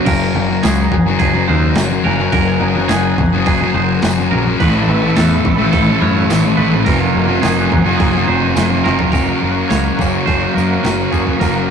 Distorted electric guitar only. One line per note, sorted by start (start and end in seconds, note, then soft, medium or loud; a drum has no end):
0.06 0.35 F#2 medium
0.06 0.36 C#3 medium
0.06 0.37 F#3 loud
0.35 0.63 F#2 medium
0.35 0.50 C#3 medium
0.35 0.48 F#3 medium
0.49 0.63 C#3 medium
0.49 0.65 F#3 medium
0.63 0.92 F#2 medium
0.63 0.92 C#3 medium
0.63 0.93 F#3 loud
0.92 muted distorted electric guitar stroke medium
1.06 1.35 C#3 medium
1.06 1.32 F#3 medium
1.33 1.48 C#3 medium
1.33 1.49 F#3 medium
1.48 1.75 F#2 medium
1.48 1.76 C#3 medium
1.48 1.78 F#3 medium
1.76 2.03 F#2 loud
1.76 1.91 C#3 loud
1.76 1.88 F#3 loud
1.90 2.04 C#3 medium
1.90 2.06 F#3 medium
2.04 2.31 F#2 medium
2.04 2.19 C#3 medium
2.04 2.16 F#3 medium
2.17 2.32 C#3 medium
2.17 2.34 F#3 medium
2.32 2.59 F#2 medium
2.32 2.60 C#3 medium
2.32 2.61 F#3 medium
2.60 2.88 F#2 medium
2.60 2.77 C#3 medium
2.60 2.74 F#3 medium
2.75 2.90 C#3 medium
2.75 2.91 F#3 medium
2.89 3.17 F#2 loud
2.89 3.18 C#3 loud
2.89 3.18 F#3 loud
3.18 muted distorted electric guitar stroke soft
3.33 3.62 C#3 medium
3.33 3.60 F#3 medium
3.61 3.75 C#3 medium
3.61 3.76 F#3 medium
3.74 4.02 F#2 medium
3.74 4.03 C#3 medium
3.74 4.04 F#3 medium
4.03 4.30 F#2 loud
4.03 4.18 C#3 loud
4.03 4.16 F#3 loud
4.17 4.31 C#3 medium
4.17 4.32 F#3 medium
4.32 4.58 F#2 medium
4.32 4.46 C#3 medium
4.32 4.44 F#3 medium
4.46 4.59 C#3 medium
4.46 4.58 F#3 medium
4.60 4.88 A2 medium
4.60 4.89 E3 medium
4.60 4.90 A3 loud
4.89 5.15 A2 medium
4.89 5.05 E3 medium
4.89 5.02 A3 medium
5.03 5.16 E3 medium
5.03 5.18 A3 medium
5.17 5.43 A2 medium
5.17 5.44 E3 loud
5.17 5.44 A3 loud
5.44 muted distorted electric guitar stroke soft
5.58 5.89 E3 medium
5.58 5.86 A3 medium
5.87 6.02 E3 medium
5.87 6.03 A3 medium
6.02 6.30 A2 medium
6.02 6.31 E3 medium
6.02 6.32 A3 medium
6.31 6.57 A2 loud
6.31 6.46 E3 loud
6.31 6.43 A3 loud
6.44 6.59 E3 medium
6.44 6.59 A3 medium
6.58 6.85 A2 medium
6.58 6.74 E3 medium
6.58 6.72 A3 medium
6.73 6.86 E3 soft
6.73 6.85 A3 medium
6.86 7.13 F#2 medium
6.86 7.15 C#3 medium
6.86 7.15 F#3 loud
7.14 7.40 F#2 medium
7.14 7.28 C#3 medium
7.14 7.26 F#3 medium
7.27 7.41 C#3 medium
7.27 7.43 F#3 medium
7.41 7.70 F#2 medium
7.41 7.71 C#3 medium
7.41 7.71 F#3 loud
7.72 muted distorted electric guitar stroke medium
7.85 8.14 C#3 medium
7.85 8.12 F#3 medium
8.13 8.26 C#3 medium
8.13 8.27 F#3 medium
8.26 8.55 F#2 medium
8.26 8.56 C#3 medium
8.26 8.58 F#3 medium
8.57 8.83 F#2 loud
8.57 8.72 C#3 medium
8.57 8.70 F#3 loud
8.71 8.85 C#3 medium
8.71 8.86 F#3 medium
8.85 9.11 F#2 medium
8.85 9.02 C#3 medium
8.85 9.00 F#3 medium
9.01 9.13 C#3 soft
9.01 9.12 F#3 medium
9.14 9.70 F#2 medium
9.14 9.44 C#3 medium
9.14 9.42 F#3 medium
9.42 9.71 C#3 medium
9.42 9.73 F#3 medium
9.70 10.26 F#2 medium
9.70 10.00 C#3 medium
9.70 9.99 F#3 medium
9.99 10.27 C#3 medium
9.99 10.29 F#3 medium
10.27 10.81 F#2 medium
10.27 10.56 C#3 loud
10.27 10.54 F#3 medium
10.55 10.83 C#3 medium
10.55 10.85 F#3 medium
10.83 11.38 F#2 medium
10.83 11.13 C#3 medium
10.83 11.11 F#3 medium
11.12 11.39 C#3 medium
11.12 11.42 F#3 medium
11.39 11.70 F#2 medium
11.39 11.70 C#3 medium
11.39 11.69 F#3 medium